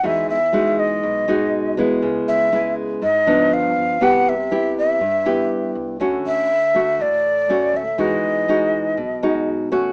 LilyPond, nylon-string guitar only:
\new Staff \with { instrumentName = "Nylon-string guitar" } { \time 4/4 \key e \major \tempo 4 = 121 << { <gis dis' fis'>8 r8 <gis dis' fis'>4. <gis dis' fis'>4 <gis b e'>8~ | <gis b e'>4 <gis b e'>4 r8 <f b d'>4. | <b e' g'>8 r8 <b e' g'>4 r8 <b e' g'>4. | <a cis' fis'>4 r8 <a fis'>4. <a cis' fis'>8 r8 |
<gis dis' fis'>4 <gis dis' fis'>4 r8 <gis dis' fis'>4 <a cis' fis'>8 | } \\ { e2 b,2 | cis2 gis,4 r4 | c2 g,2 | d2 a,2 |
e2 b,2 | } >> }